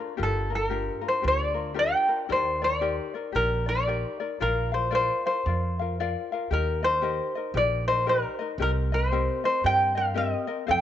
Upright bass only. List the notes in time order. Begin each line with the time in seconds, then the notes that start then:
0.20 G1
1.24 D2
2.30 D#2
3.35 A#1
4.41 A#1
5.46 F2
6.51 D#2
7.54 A#1
8.58 C2
9.64 G2
10.69 F2